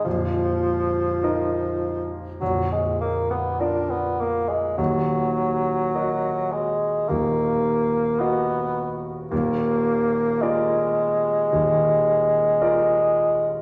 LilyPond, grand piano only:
\new Staff \with { instrumentName = "Grand piano" } { \time 4/4 \key bes \phrygian \tempo 4 = 54 <bes,,, bes,,>4 <ees' bes' ees''>4 <bes,,, bes,,>4 <f' bes' d''>4 | <ees,, ees,>4 <ges' bes' ees''>4 <ees,, ees,>4 <ges' bes' ees''>4 | <ees,, ees,>4 <f' bes' d''>4 <ees,, ees,>4 <f' bes' d''>4 | }